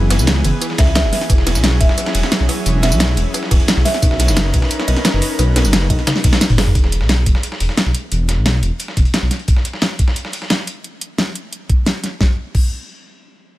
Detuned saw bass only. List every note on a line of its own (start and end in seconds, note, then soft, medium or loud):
0.00 0.20 F#1 loud
0.19 0.43 C#2 medium
0.45 0.52 F#1 loud
0.79 1.06 C#2 loud
1.04 1.12 F#1 loud
1.30 1.57 E1 loud
1.55 1.80 B1 medium
1.81 1.89 E1 medium
2.15 2.23 E1 medium
2.40 2.48 B1 medium
2.66 2.93 E1 loud
2.92 3.16 B1 medium
3.17 3.25 E1 loud
3.51 3.59 E1 medium
3.77 3.85 B1 medium
4.02 4.30 B1 loud
4.28 4.52 F#1 medium
4.54 4.61 B1 medium
4.88 4.96 B1 medium
5.14 5.21 F#1 medium
5.39 5.66 B1 loud
5.65 5.89 F#1 medium
5.90 5.98 B1 medium
6.24 6.32 B1 loud
6.50 6.74 F#1 medium
6.75 7.03 E1 loud
7.01 7.25 B1 medium
7.26 7.34 E1 medium
7.61 7.68 E1 medium
7.86 7.94 B1 medium
8.12 8.39 E1 loud
8.38 8.62 B1 medium
8.63 8.71 E1 medium
8.97 9.05 E1 medium
9.23 9.30 B1 medium